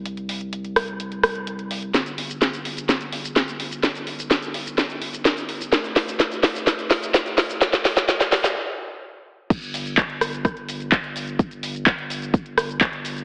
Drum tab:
CC |----------------|----------------|----------------|----------------|
HH |xxoxxxoxxxoxxxox|xxoxxxoxxxoxxxox|xxoxxxoxxxoxxxox|xxoxxxoxxxoxxxox|
SH |----------------|xx-xxx-xxx-xxx-x|xx-xxx-xxx-xxx-x|xx-xxx-xxx-xxx-x|
CP |----------------|----------------|----------------|----------------|
SD |------r---r-----|o---o---o---o---|o---o---o---o---|o-o-o-o-o-o-o-o-|
BD |----------------|----------------|----------------|----------------|

CC |----------------|x---------------|----------------|
HH |xxo-xxox--------|xxoxxxoxxxoxxxox|xxoxxxoxxxoxxxox|
SH |xx-xxx-x--------|xxxxx-xxx-xxx-xx|xxxxx-xxx-xxx-xx|
CP |----------------|----x-------x---|----x-------x---|
SD |oooooooo--------|------r-r-------|----------r-----|
BD |----------------|o---o---o---o---|o---o---o---o---|